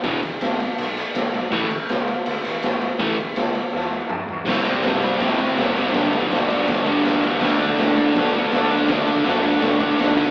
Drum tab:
CC |----------------|x---------------|----------------|x---------------|
RD |x-x-x-x-x-x-x-x-|--x-x-x-x-x-x-x-|x-x-x-x---------|--x-x-x-x-x-x-x-|
SD |----o-------o---|----o-------o---|----o---o-------|o---o---o---o---|
T2 |----------------|----------------|------------o---|----------------|
FT |----------------|----------------|--------------o-|----------------|
BD |o---------------|o---------------|o---------------|o--o----o-o-----|

CC |----------------|x---------------|----------------|
RD |x-x-x-x-x-x-x-x-|--x-x-x-x-x-x-x-|x-x-x-x-x-x-x-x-|
SD |o---o---o---o---|o---o---o---o---|o---o---o---o---|
T2 |----------------|----------------|----------------|
FT |----------------|----------------|----------------|
BD |o--o----o-o-----|o--o----o-o-----|o--o----o-o---o-|